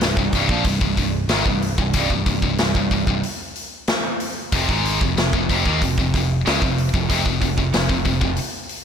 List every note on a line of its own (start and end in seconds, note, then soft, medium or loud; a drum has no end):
0.01 0.16 C1 medium
0.01 0.17 C2 medium
0.01 0.18 G2 medium
0.01 snare medium
0.01 open hi-hat soft
0.17 0.32 C1 medium
0.17 0.34 C2 soft
0.17 0.34 G2 medium
0.17 kick medium
0.33 0.48 C1 medium
0.33 0.50 C2 medium
0.33 0.50 G2 medium
0.33 kick medium
0.33 open hi-hat soft
0.49 0.64 A#1 medium
0.49 0.66 A#2 medium
0.49 0.66 F3 medium
0.49 kick medium
0.64 0.80 C1 medium
0.64 0.80 C2 medium
0.64 0.80 G2 medium
0.64 kick medium
0.64 open hi-hat medium
0.81 0.97 C1 medium
0.81 0.97 C2 medium
0.81 0.97 G2 medium
0.81 kick medium
0.97 1.27 C1 medium
0.97 1.24 C2 medium
0.97 1.24 G2 medium
0.97 kick medium
0.97 open hi-hat soft
1.28 1.44 G#1 medium
1.28 1.45 G#2 medium
1.28 1.45 D#3 medium
1.28 snare medium
1.28 open hi-hat medium
1.46 1.76 C1 medium
1.46 1.72 C2 medium
1.46 1.72 G2 medium
1.46 kick medium
1.62 open hi-hat soft
1.78 1.94 C1 medium
1.78 1.93 C2 medium
1.78 1.93 G2 medium
1.78 kick medium
1.93 2.10 C1 medium
1.93 2.09 C2 medium
1.93 2.10 G2 medium
1.93 kick medium
1.93 open hi-hat medium
2.10 2.26 C1 medium
2.10 2.25 C2 medium
2.10 2.25 G2 medium
2.10 kick medium
2.26 2.42 C1 medium
2.26 2.42 C2 medium
2.26 2.42 G2 medium
2.26 kick medium
2.26 open hi-hat soft
2.42 2.57 C1 medium
2.42 2.58 C2 soft
2.42 2.59 G2 medium
2.42 kick medium
2.57 2.73 C1 medium
2.57 2.75 C2 medium
2.57 2.75 G2 medium
2.57 snare medium
2.57 open hi-hat medium
2.75 2.90 C1 medium
2.75 2.90 C2 medium
2.75 2.91 G2 medium
2.75 kick medium
2.91 3.06 C1 medium
2.91 3.07 C2 medium
2.91 3.08 G2 medium
2.91 kick medium
2.91 open hi-hat soft
3.07 3.22 C1 medium
3.07 3.24 C2 medium
3.07 3.24 G2 medium
3.07 kick medium
3.23 open hi-hat medium
3.56 open hi-hat soft
3.87 snare medium
3.87 open hi-hat soft
4.20 open hi-hat soft
4.52 4.68 F1 medium
4.52 4.68 F2 medium
4.52 4.68 C3 medium
4.52 kick medium
4.52 open hi-hat medium
4.69 4.99 G#1 medium
4.69 5.00 G#2 medium
4.69 5.00 D#3 medium
4.69 5.01 G#3 medium
4.69 kick medium
4.85 open hi-hat soft
5.01 5.16 F1 medium
5.01 5.16 F2 medium
5.01 5.17 C3 medium
5.01 kick medium
5.17 5.32 F1 medium
5.17 5.33 F2 medium
5.17 5.33 C3 medium
5.17 snare loud
5.17 open hi-hat medium
5.33 5.48 F1 medium
5.33 5.49 F2 medium
5.33 5.48 C3 medium
5.33 kick medium
5.49 5.65 F1 medium
5.49 5.65 F2 medium
5.49 5.64 C3 medium
5.49 kick medium
5.49 open hi-hat soft
5.66 5.80 D#2 medium
5.66 5.81 D#3 medium
5.66 5.81 A#3 medium
5.66 kick medium
5.82 5.97 F1 medium
5.82 5.98 F2 soft
5.82 5.98 C3 medium
5.82 kick medium
5.82 open hi-hat medium
5.98 6.13 F1 medium
5.98 6.14 F2 medium
5.98 6.14 C3 medium
5.98 kick medium
6.14 6.44 F1 medium
6.14 6.40 F2 medium
6.14 6.40 C3 medium
6.14 kick medium
6.14 open hi-hat soft
6.46 6.61 C#2 medium
6.46 6.61 C#3 medium
6.46 6.62 G#3 medium
6.46 snare medium
6.46 open hi-hat medium
6.61 6.91 F1 medium
6.61 6.88 F2 medium
6.61 6.88 C3 medium
6.61 kick medium
6.78 open hi-hat soft
6.94 7.09 F1 medium
6.94 7.09 F2 medium
6.94 7.09 C3 medium
6.94 kick medium
7.10 7.25 F1 medium
7.10 7.25 F2 medium
7.10 7.25 C3 medium
7.10 kick medium
7.10 open hi-hat medium
7.26 7.41 F1 medium
7.26 7.41 F2 medium
7.26 7.41 C3 medium
7.26 kick medium
7.41 7.57 F1 medium
7.41 7.57 F2 soft
7.41 7.57 C3 medium
7.41 kick medium
7.41 open hi-hat soft
7.58 7.73 F1 medium
7.58 7.73 F2 medium
7.58 7.73 C3 medium
7.58 kick medium
7.74 7.89 F1 medium
7.74 7.88 F2 medium
7.74 7.88 C3 medium
7.74 snare medium
7.74 open hi-hat medium
7.89 8.05 F1 medium
7.89 8.04 F2 medium
7.89 8.04 C3 medium
7.89 kick medium
8.05 8.21 F1 medium
8.05 8.20 F2 medium
8.05 8.20 C3 medium
8.05 kick medium
8.05 open hi-hat soft
8.21 8.37 F1 medium
8.21 8.38 F2 medium
8.21 8.38 C3 medium
8.21 kick medium
8.36 open hi-hat medium
8.69 open hi-hat soft